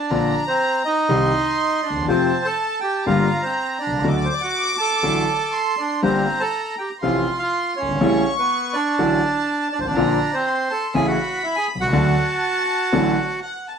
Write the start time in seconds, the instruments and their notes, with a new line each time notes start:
Already playing: bandoneon D4 D5, violin section A5
0.10 grand piano A#1 A#2 D3 F3 A#3 F4, violin section A#5
0.47 bandoneon C4 C5
0.85 bandoneon D#4 D#5
1.09 grand piano C2 C3 D#3 G3 D#4, violin section C6
1.83 bandoneon D4 D5
1.90 grand piano D2
1.96 grand piano D#2
2.02 grand piano E2
2.08 grand piano F2 C3 F3 A3 F4, bandoneon C4 C5, violin section A5
2.44 bandoneon A4 A5
2.80 bandoneon G4 G5
3.06 grand piano G1 G2 D3 G3 A#3 F4, bandoneon F4 F5, violin section A#5
3.43 bandoneon C4 C5
3.79 bandoneon D4 D5
3.87 grand piano B1
3.92 grand piano C2
3.99 grand piano C#2
4.04 grand piano D2 D3 F#3 A3 F#4, bandoneon D#5, violin section D6
4.17 bandoneon D5
4.25 bandoneon C5
4.34 bandoneon D5
4.41 bandoneon F#4 F#5
4.78 bandoneon A4 A5
5.03 grand piano A1 A2 D3 F#3 A3 F#4
5.52 violin section C6
5.78 bandoneon D4 D5
6.02 grand piano G1 G2 D3 G3 A#3 G4, bandoneon C4 C5, violin section A#5
6.40 bandoneon A4 A5
6.78 bandoneon G4 G5
7.01 grand piano A1 A2 C3 F3 A3 F4, bandoneon F4 F5, violin section C6
7.39 bandoneon F4 F5
7.76 bandoneon C#4 C#5
7.82 grand piano F#1
7.88 grand piano G1
7.95 grand piano G#1
8.01 grand piano A1 A2 C#3 G3 A3 E4, violin section C#6
8.39 bandoneon B3 B4
8.73 bandoneon D4 D5
8.98 grand piano A1 A2 D3 F#3 A3 F#4, violin section A5
9.72 bandoneon D4 D5
9.79 grand piano G1, bandoneon C5
9.84 grand piano G#1, bandoneon D4 D5
9.91 grand piano A1
9.96 grand piano A#1 A#2 D3 F3 A#3 F4, violin section A#5
10.33 bandoneon C4 C5
10.46 violin section C6
10.70 bandoneon A4 A5
10.94 grand piano A1 A2 C#3 E3 A3 E4, bandoneon G#4 G#5, violin section B5
11.07 bandoneon F#4 F#5
11.44 bandoneon E4 E5
11.56 bandoneon G#4 G#5
11.75 grand piano B1
11.80 grand piano C2, bandoneon F#4 F#5
11.87 grand piano C#2
11.93 grand piano D2 D3 F#3 A3 F#4, violin section A5
12.92 grand piano A1 A2 D3 F#3 A3 F#4
13.43 violin section F#5
13.68 violin section A5